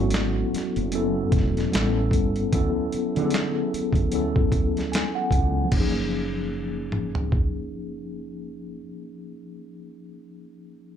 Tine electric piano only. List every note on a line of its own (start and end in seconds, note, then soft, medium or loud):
0.00 0.92 F#3 medium
0.00 0.93 B3 medium
0.00 0.93 C#4 medium
0.00 0.95 E4 medium
0.00 0.89 F#4 medium
0.00 0.95 A4 medium
0.92 1.72 F#3 medium
0.92 1.71 B3 medium
0.92 1.73 C#4 medium
0.92 1.74 E4 medium
0.92 1.74 A4 medium
1.72 2.48 G3 medium
1.72 2.48 B3 medium
1.72 2.49 C#4 medium
1.72 2.49 E4 medium
1.72 2.50 A4 medium
2.51 3.10 F#3 medium
2.51 3.11 B3 medium
2.51 3.11 C#4 medium
2.51 3.12 E4 medium
2.51 3.12 A4 medium
3.15 4.07 F#3 medium
3.15 4.07 B3 medium
3.15 4.08 C#4 medium
3.15 4.08 E4 medium
3.15 3.22 G#4 medium
3.25 4.12 A4 medium
4.11 5.63 F#3 medium
4.11 5.64 B3 medium
4.11 5.64 C#4 medium
4.11 5.65 E4 medium
4.11 5.65 A4 medium
4.92 5.13 G#5 medium
5.15 5.68 F#5 medium
5.64 8.72 F3 medium
5.64 8.76 A#3 medium
5.72 8.80 C#4 medium
5.72 8.84 D#4 medium
5.80 8.88 G#4 medium